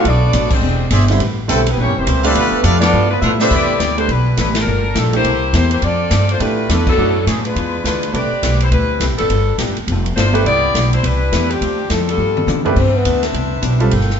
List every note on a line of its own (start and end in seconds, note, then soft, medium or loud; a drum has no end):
0.04 0.33 B1 medium
0.04 0.23 B2 soft
0.04 0.24 F#3 soft
0.04 0.53 F#3 medium
0.04 0.24 A3 soft
0.04 0.53 A3 medium
0.04 0.52 B3 medium
0.04 0.25 D4 soft
0.04 0.52 D4 medium
0.04 0.52 F#4 loud
0.04 0.52 A4 medium
0.04 0.52 D5 loud
0.04 kick soft
0.04 ride medium
0.33 0.61 A1 medium
0.33 0.52 B2 medium
0.33 0.52 F#3 medium
0.33 0.53 A3 medium
0.33 0.53 D4 medium
0.33 kick soft
0.33 hi-hat pedal medium
0.33 ride medium
0.50 0.92 D3 medium
0.50 0.92 G#3 medium
0.50 0.92 C4 medium
0.50 0.92 D4 medium
0.50 0.92 G4 medium
0.50 0.92 C5 medium
0.50 kick medium
0.50 crash medium
0.62 0.90 E1 medium
0.62 0.81 E3 soft
0.62 0.81 C4 soft
0.62 0.82 D4 soft
0.62 0.82 G#4 soft
0.91 1.19 G1 loud
0.91 1.10 E3 medium
0.91 1.10 C4 medium
0.91 1.10 D4 medium
0.91 1.03 G#4 medium
0.91 1.10 G#4 medium
0.91 1.03 C5 medium
0.91 1.03 D5 medium
0.91 1.03 E5 medium
0.91 kick soft
0.91 hi-hat pedal medium
0.91 ride medium
1.00 snare soft
1.08 1.19 D3 medium
1.08 1.19 G3 medium
1.08 1.20 C4 medium
1.08 1.20 E4 medium
1.08 snare soft
1.08 ride medium
1.20 1.48 A1 medium
1.20 1.39 A3 soft
1.20 1.40 C4 soft
1.20 1.40 G4 soft
1.20 1.40 B4 medium
1.20 kick soft
1.20 ride medium
1.48 1.77 B1 medium
1.48 1.64 D3 medium
1.48 1.64 G3 soft
1.48 1.67 A3 medium
1.48 1.64 C4 medium
1.48 1.68 C4 medium
1.48 1.65 E4 medium
1.48 1.68 G4 medium
1.48 1.60 A4 medium
1.48 1.60 B4 medium
1.48 1.69 B4 medium
1.48 1.60 C5 medium
1.48 1.60 G5 medium
1.48 kick soft
1.48 hi-hat pedal medium
1.48 ride medium
1.52 1.67 C3 medium
1.52 1.67 E3 medium
1.52 1.67 G3 medium
1.52 1.67 A3 medium
1.52 1.67 C4 medium
1.52 1.67 E4 medium
1.52 1.67 A4 medium
1.66 1.79 E3 medium
1.66 1.79 G3 medium
1.66 1.79 B3 medium
1.66 1.80 C4 medium
1.66 1.80 E4 medium
1.66 ride medium
1.71 1.80 G3 medium
1.71 1.80 B4 medium
1.77 1.87 A#1 medium
1.77 1.96 A#2 soft
1.77 1.96 E3 medium
1.77 1.97 G3 medium
1.77 1.95 G3 medium
1.77 1.97 C#4 medium
1.77 1.96 C#4 medium
1.77 1.98 E4 soft
1.77 kick soft
1.82 1.96 A#3 medium
1.82 1.96 E4 medium
1.82 1.96 G4 medium
1.82 1.96 C#5 medium
1.87 1.97 G1 medium
1.97 2.06 E1 medium
1.97 2.37 E3 medium
1.97 2.37 G3 medium
1.97 2.37 A#3 medium
1.97 2.37 C4 medium
1.97 2.37 E4 medium
1.97 2.37 G4 medium
1.97 2.37 C5 medium
2.06 2.34 C#2 loud
2.06 2.25 A#2 medium
2.06 2.26 G3 medium
2.06 2.26 C#4 medium
2.06 2.26 E4 medium
2.06 kick soft
2.06 hi-hat pedal medium
2.06 ride medium
2.23 2.62 A3 medium
2.23 2.62 D4 medium
2.23 2.62 G4 medium
2.23 2.62 A4 medium
2.23 2.62 B4 medium
2.23 2.63 B4 medium
2.23 2.62 D5 medium
2.23 2.62 F5 loud
2.23 ride medium
2.33 2.51 D2 medium
2.33 2.53 B2 medium
2.33 2.63 D3 medium
2.33 2.54 F3 soft
2.33 2.63 F3 medium
2.33 2.54 A3 soft
2.33 2.63 B3 medium
2.33 2.55 D4 soft
2.33 kick soft
2.33 ride medium
2.37 2.64 A3 medium
2.37 2.63 D4 medium
2.37 2.63 F4 medium
2.37 2.63 B4 loud
2.52 muted upright bass stroke soft
2.63 2.92 F2 loud
2.63 2.83 B2 medium
2.63 2.84 F3 medium
2.63 2.80 F3 medium
2.63 2.80 A3 medium
2.63 2.82 A3 medium
2.63 2.84 A3 medium
2.63 2.80 B3 medium
2.63 2.80 D4 soft
2.63 2.79 D4 medium
2.63 2.84 D4 medium
2.63 2.80 F4 medium
2.63 2.80 G4 medium
2.63 2.75 A4 medium
2.63 2.80 A4 medium
2.63 2.76 B4 medium
2.63 2.80 B4 medium
2.63 2.76 D5 medium
2.63 2.80 D5 medium
2.63 2.76 F5 loud
2.63 kick soft
2.63 hi-hat pedal medium
2.63 ride medium
2.80 3.08 F3 loud
2.80 3.08 B3 loud
2.80 3.08 B3 medium
2.80 3.08 D4 medium
2.80 3.09 F4 medium
2.80 3.08 A4 loud
2.80 3.08 D5 loud
2.80 snare medium
2.80 ride medium
2.93 3.12 G2 soft
2.93 3.21 G2 medium
2.93 3.13 F3 soft
2.93 3.13 B3 medium
2.93 3.13 E4 medium
3.11 3.22 D3 medium
3.11 3.21 F3 medium
3.11 3.21 A3 medium
3.11 3.21 B3 medium
3.11 3.20 D4 medium
3.11 3.22 F4 medium
3.11 3.21 B4 loud
3.21 3.40 G2 medium
3.21 3.50 A2 medium
3.21 3.41 F3 medium
3.21 3.44 F3 medium
3.21 3.32 A3 medium
3.21 3.44 B3 medium
3.21 3.41 B3 medium
3.21 3.23 D4 medium
3.21 3.32 D4 medium
3.21 3.44 E4 medium
3.21 3.42 E4 medium
3.21 3.32 F4 medium
3.21 3.44 A4 medium
3.21 3.24 B4 medium
3.21 3.32 B4 medium
3.21 3.44 E5 loud
3.21 hi-hat pedal medium
3.40 3.78 C3 medium
3.40 3.78 A3 medium
3.40 3.52 A3 medium
3.40 3.78 D4 medium
3.40 3.52 D4 medium
3.40 3.52 F4 medium
3.40 3.78 G4 medium
3.40 3.78 B4 loud
3.40 3.79 B4 medium
3.40 3.52 C5 loud
3.40 3.78 D5 medium
3.40 3.78 E5 loud
3.40 snare medium
3.50 3.79 E2 medium
3.50 3.69 C3 soft
3.50 3.70 E3 soft
3.50 3.70 B3 soft
3.50 3.99 B3 medium
3.50 3.71 D4 soft
3.50 3.97 E4 medium
3.50 3.99 G4 loud
3.50 kick medium
3.50 crash medium
3.54 3.99 D5 loud
3.80 4.08 D2 medium
3.80 3.99 C3 medium
3.80 3.99 E3 medium
3.80 3.99 B3 medium
3.80 4.00 D4 medium
3.80 kick soft
3.80 snare medium
3.80 hi-hat pedal soft
3.80 ride medium
3.97 4.09 G3 medium
3.97 4.08 A3 medium
3.97 4.08 D4 soft
3.97 4.09 D4 medium
3.97 4.08 E4 medium
3.97 4.08 G4 soft
3.97 4.08 B4 medium
3.97 4.09 C5 loud
3.97 ride soft
4.08 4.37 B1 medium
4.08 4.28 C3 soft
4.08 4.28 E3 soft
4.08 4.39 G3 medium
4.08 4.29 B3 medium
4.08 4.39 D4 medium
4.08 4.38 E4 medium
4.08 4.39 B4 medium
4.08 kick soft
4.08 ride soft
4.12 4.29 D4 medium
4.37 4.66 A1 loud
4.37 4.57 C3 medium
4.37 4.57 E3 medium
4.37 4.55 G3 medium
4.37 4.57 B3 medium
4.37 4.57 D4 medium
4.37 4.55 D4 medium
4.37 4.55 E4 medium
4.37 4.55 B4 loud
4.37 kick soft
4.37 snare medium
4.37 hi-hat pedal medium
4.37 ride medium
4.55 snare medium
4.55 ride medium
4.59 4.97 F3 medium
4.59 4.97 D4 medium
4.59 4.96 A4 medium
4.59 4.97 A#4 loud
4.66 4.95 G1 medium
4.66 4.86 G3 soft
4.66 4.86 A#3 soft
4.66 4.86 F4 soft
4.66 4.87 A4 soft
4.95 5.24 A#1 medium
4.95 5.14 F3 medium
4.95 5.14 G3 medium
4.95 5.14 A#3 medium
4.95 5.14 D4 medium
4.95 5.15 F4 medium
4.95 5.15 A4 medium
4.95 5.14 A4 medium
4.95 kick soft
4.95 snare medium
4.95 hi-hat pedal medium
4.95 ride medium
5.13 5.23 E3 medium
5.13 5.23 A3 medium
5.13 5.23 D4 medium
5.13 5.53 E4 loud
5.13 5.24 G4 medium
5.13 5.52 G4 medium
5.13 ride soft
5.17 5.53 A#3 medium
5.17 5.53 C5 loud
5.24 5.53 C2 medium
5.24 5.44 C3 soft
5.24 5.45 A#3 soft
5.24 5.45 E4 soft
5.24 kick soft
5.24 ride medium
5.29 5.46 A4 medium
5.53 5.81 E2 loud
5.53 5.72 C3 medium
5.53 5.72 A#3 medium
5.53 5.71 A#3 medium
5.53 5.73 E4 medium
5.53 5.71 E4 medium
5.53 5.71 G4 medium
5.53 5.73 A4 medium
5.53 5.71 C5 loud
5.53 kick soft
5.53 snare medium
5.53 hi-hat pedal medium
5.53 ride medium
5.71 5.83 A#3 medium
5.71 5.83 E4 medium
5.71 5.83 G4 medium
5.71 5.82 C5 medium
5.71 ride medium
5.82 6.10 F2 medium
5.82 6.01 F3 soft
5.82 6.30 C4 medium
5.82 6.02 C4 soft
5.82 6.03 D4 soft
5.82 6.30 F4 medium
5.82 6.30 A4 loud
5.82 6.03 A4 soft
5.82 6.30 D5 loud
5.82 kick soft
5.82 ride medium
6.11 6.39 G2 medium
6.11 6.30 F3 medium
6.11 6.30 C4 medium
6.11 6.31 D4 medium
6.11 6.31 A4 medium
6.11 kick soft
6.11 snare medium
6.11 hi-hat pedal medium
6.11 ride medium
6.29 6.40 A3 medium
6.29 6.40 D4 medium
6.29 6.39 F4 medium
6.29 6.41 C5 medium
6.29 ride soft
6.39 6.68 A2 medium
6.39 6.68 E3 medium
6.39 6.58 F3 soft
6.39 6.68 A3 medium
6.39 6.87 A3 medium
6.39 6.59 C4 soft
6.39 6.68 D4 soft
6.39 6.87 D4 medium
6.39 6.60 D4 medium
6.39 6.87 F4 medium
6.39 6.68 G4 medium
6.39 6.60 A4 medium
6.39 6.87 B4 medium
6.39 kick soft
6.39 ride medium
6.69 6.97 E2 medium
6.69 6.86 E3 medium
6.69 6.88 F3 medium
6.69 6.86 A3 medium
6.69 6.88 C4 medium
6.69 6.88 D4 medium
6.69 6.86 D4 medium
6.69 6.89 A4 medium
6.69 6.86 A4 medium
6.69 kick soft
6.69 snare medium
6.69 hi-hat pedal medium
6.69 ride medium
6.87 7.26 F#3 medium
6.87 7.26 B3 medium
6.87 7.26 D4 medium
6.87 7.26 A4 loud
6.87 kick medium
6.87 crash medium
6.97 7.26 F#2 medium
6.97 7.16 B2 soft
6.97 7.14 E3 medium
6.97 7.17 F#3 soft
6.97 7.14 A3 medium
6.97 7.18 A3 soft
6.97 7.14 D4 medium
6.97 7.18 D4 soft
6.97 7.15 F#4 medium
7.26 7.55 A2 medium
7.26 7.45 B2 medium
7.26 7.44 E3 medium
7.26 7.46 F#3 medium
7.26 7.46 A3 medium
7.26 7.44 A3 medium
7.26 7.44 C#4 medium
7.26 7.46 D4 medium
7.26 7.44 G#4 medium
7.26 kick soft
7.26 snare medium
7.26 hi-hat pedal medium
7.26 ride medium
7.45 7.84 G#3 medium
7.45 7.84 D4 medium
7.45 7.84 F4 medium
7.45 7.84 B4 loud
7.45 ride soft
7.56 7.84 E2 medium
7.56 7.75 E3 soft
7.56 7.75 G#3 soft
7.56 7.76 D4 soft
7.56 7.76 F4 medium
7.56 kick soft
7.56 ride medium
7.84 8.13 D2 loud
7.84 8.03 E3 medium
7.84 8.04 G#3 medium
7.84 8.12 G#3 medium
7.84 8.12 D4 medium
7.84 8.04 D4 medium
7.84 8.12 F4 medium
7.84 8.04 F4 medium
7.84 8.12 B4 medium
7.84 kick soft
7.84 snare medium
7.84 hi-hat pedal medium
7.84 ride medium
8.03 ride soft
8.13 8.30 C2 medium
8.13 8.32 A3 soft
8.13 8.30 A3 medium
8.13 8.61 C4 medium
8.13 8.33 C4 soft
8.13 8.30 D4 soft
8.13 8.61 G4 medium
8.13 8.30 G4 soft
8.13 8.34 G4 soft
8.13 8.30 B4 medium
8.13 8.61 B4 medium
8.13 8.34 B4 soft
8.13 8.61 D5 medium
8.13 kick soft
8.13 ride medium
8.31 muted upright bass stroke soft
8.43 8.71 B1 medium
8.43 8.62 A3 medium
8.43 8.62 C4 medium
8.43 8.63 G4 medium
8.43 8.63 B4 medium
8.43 kick soft
8.43 snare medium
8.43 hi-hat pedal medium
8.43 ride medium
8.60 8.71 G3 medium
8.60 8.71 B3 medium
8.60 8.71 E4 medium
8.60 8.72 C5 medium
8.60 ride medium
8.71 9.00 D2 medium
8.71 9.05 G3 medium
8.71 8.91 A3 soft
8.71 9.05 C4 medium
8.71 8.91 C4 soft
8.71 9.05 E4 medium
8.71 8.92 G4 medium
8.71 9.05 B4 medium
8.71 8.92 B4 soft
8.71 kick soft
8.71 ride medium
9.00 9.11 C2 medium
9.00 9.20 A3 medium
9.00 9.20 C4 medium
9.00 9.21 G4 medium
9.00 9.21 B4 medium
9.00 kick soft
9.00 snare medium
9.00 hi-hat pedal medium
9.00 ride medium
9.11 9.20 A1 medium
9.18 9.29 G1 medium
9.18 9.56 F3 medium
9.18 9.56 B3 medium
9.18 9.56 D4 medium
9.18 9.56 A4 medium
9.18 ride medium
9.29 9.58 G1 medium
9.29 9.49 G3 soft
9.29 9.49 B3 soft
9.29 9.50 F4 soft
9.29 9.50 A4 soft
9.29 kick soft
9.29 ride medium
9.58 9.68 A1 medium
9.58 9.75 F3 medium
9.58 9.78 G3 medium
9.58 9.75 B3 medium
9.58 9.78 B3 medium
9.58 9.75 D4 medium
9.58 9.78 F4 medium
9.58 9.75 G4 medium
9.58 9.79 A4 medium
9.58 kick soft
9.58 snare medium
9.58 hi-hat pedal medium
9.58 ride medium
9.68 9.77 G1 medium
9.77 9.87 F1 medium
9.77 ride soft
9.87 10.16 F1 medium
9.87 10.07 G3 soft
9.87 10.08 B3 medium
9.87 kick soft
9.87 ride medium
9.92 10.08 F4 medium
9.92 10.09 A4 medium
10.06 ride soft
10.16 10.44 G1 medium
10.16 10.35 G3 medium
10.16 10.43 A3 medium
10.16 10.36 B3 medium
10.16 10.44 D4 medium
10.16 10.43 F4 medium
10.16 10.36 F4 medium
10.16 10.36 A4 medium
10.16 10.43 C5 loud
10.16 kick soft
10.16 snare medium
10.16 hi-hat pedal medium
10.16 ride medium
10.33 10.44 A3 medium
10.33 10.44 D4 medium
10.33 10.44 G4 medium
10.33 10.44 B4 medium
10.33 ride medium
10.45 10.73 C2 medium
10.45 10.65 C3 soft
10.45 10.65 E3 soft
10.45 10.89 B3 medium
10.45 10.65 B3 medium
10.45 10.66 D4 soft
10.45 10.89 E4 loud
10.45 10.89 G4 loud
10.45 10.89 D5 loud
10.45 kick soft
10.45 ride medium
10.74 11.02 B1 medium
10.74 10.93 C3 medium
10.74 10.94 E3 medium
10.74 10.94 B3 medium
10.74 10.94 D4 medium
10.74 kick soft
10.74 snare medium
10.74 hi-hat pedal soft
10.74 ride medium
10.93 11.04 G3 medium
10.93 11.04 D4 medium
10.93 11.04 E4 medium
10.93 11.04 C5 medium
10.93 ride soft
11.03 11.31 C2 medium
11.03 11.22 C3 soft
11.03 11.22 E3 medium
11.03 11.51 G3 medium
11.03 11.22 B3 medium
11.03 11.23 D4 medium
11.03 11.50 D4 medium
11.03 11.51 E4 medium
11.03 11.51 B4 loud
11.03 kick soft
11.03 ride medium
11.32 11.60 E2 loud
11.32 11.51 C3 medium
11.32 11.51 E3 medium
11.32 11.52 B3 medium
11.32 11.52 D4 medium
11.32 kick soft
11.32 snare medium
11.32 hi-hat pedal medium
11.32 ride medium
11.51 11.90 F3 medium
11.51 11.90 C4 medium
11.51 11.91 D4 medium
11.51 11.90 G4 loud
11.51 ride soft
11.61 11.89 D2 medium
11.61 11.80 D3 soft
11.61 11.80 A3 soft
11.61 11.81 C4 soft
11.61 11.81 F4 soft
11.61 kick soft
11.61 ride medium
11.90 12.17 F2 medium
11.90 12.09 D3 medium
11.90 12.09 F3 medium
11.90 12.09 A3 medium
11.90 12.08 C4 medium
11.90 12.10 C4 medium
11.90 12.09 D4 medium
11.90 12.10 F4 medium
11.90 12.08 A4 medium
11.90 kick soft
11.90 snare medium
11.90 hi-hat pedal soft
11.90 ride medium
12.09 12.62 G3 medium
12.09 12.62 D4 medium
12.09 12.63 F4 medium
12.09 12.63 A4 medium
12.09 ride soft
12.18 12.46 G2 medium
12.18 12.37 G2 medium
12.18 12.37 F3 soft
12.18 12.38 B3 soft
12.18 12.39 D4 soft
12.37 high tom medium
12.47 12.66 G2 medium
12.47 12.75 D3 loud
12.47 12.67 F3 medium
12.47 12.67 B3 medium
12.47 12.67 D4 medium
12.47 hi-hat pedal soft
12.47 high tom medium
12.65 12.75 C3 medium
12.65 12.75 A3 medium
12.65 12.75 D4 medium
12.65 12.75 G4 medium
12.65 12.76 B4 medium
12.65 floor tom medium
12.75 13.04 G2 medium
12.75 12.95 C3 soft
12.75 12.95 E3 soft
12.75 12.96 B3 soft
12.75 12.98 C4 medium
12.75 13.90 D4 medium
12.75 12.96 D4 soft
12.75 13.91 B4 medium
12.75 13.91 C5 medium
12.75 13.90 E5 medium
12.75 kick medium
12.75 crash medium
12.96 13.24 B3 medium
13.05 13.33 D2 medium
13.05 13.24 C3 medium
13.05 13.25 E3 medium
13.05 13.25 B3 medium
13.05 13.25 D4 medium
13.05 kick soft
13.05 hi-hat pedal soft
13.05 ride medium
13.23 snare medium
13.23 ride soft
13.32 13.62 C2 medium
13.32 13.52 C3 medium
13.32 13.52 E3 soft
13.32 13.53 B3 medium
13.32 13.53 D4 soft
13.32 kick soft
13.32 ride medium
13.62 13.91 B1 medium
13.62 13.81 C3 medium
13.62 13.81 E3 medium
13.62 13.82 B3 medium
13.62 13.82 D4 medium
13.62 kick soft
13.62 hi-hat pedal medium
13.62 ride medium
13.80 13.90 G3 medium
13.80 13.91 C4 medium
13.80 13.91 F4 medium
13.80 13.91 A4 medium
13.80 ride soft
13.91 14.19 G1 medium
13.91 14.10 G3 medium
13.91 14.11 A#3 soft
13.91 14.20 F4 medium
13.91 14.11 F4 soft
13.91 14.20 A4 medium
13.91 14.12 A4 soft
13.91 14.20 A#4 medium
13.91 14.20 G5 medium
13.91 kick soft
13.91 ride medium
14.01 snare soft
14.10 snare soft